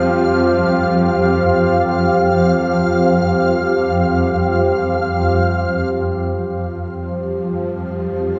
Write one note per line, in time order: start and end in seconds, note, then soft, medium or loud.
0.00 5.95 F2 medium
0.00 5.94 F3 medium
0.00 8.39 F4 medium
0.00 8.39 G4 medium
0.00 8.39 C5 medium
0.00 5.93 F5 medium
5.94 8.39 F2 medium
5.94 8.39 F3 medium
5.94 8.39 F5 medium